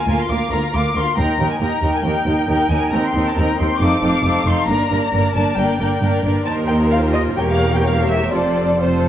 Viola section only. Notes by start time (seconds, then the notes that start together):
0.07 A#3 F4
0.29 A#3 F4
0.52 A#3 F4
0.74 A#3 F4
0.96 A#3 F4
1.18 A#3 D#4
1.39 A#3 D#4
1.61 A#3 D#4
1.83 A#3 D#4
2.04 A#3 D#4
2.27 A#3 D#4
2.49 A#3 D#4
2.71 A#3 D#4
2.93 C4 D#4
3.15 C4 D#4
3.36 C4 D#4
3.59 C4 D#4
3.80 C4 D#4
4.02 C4 D#4
4.24 C4 D#4
4.47 C4 D#4
4.69 A#3 D4
4.91 A#3 D4
5.13 A#3 D4
5.35 A#3 D4
5.58 A#3 D4
5.80 A#3 D4
6.02 A#3 D4
6.25 A#3 D4
6.47 A#3 D#4
6.91 F4
7.37 A#3 G4
8.32 C4 F4
8.81 C4 F4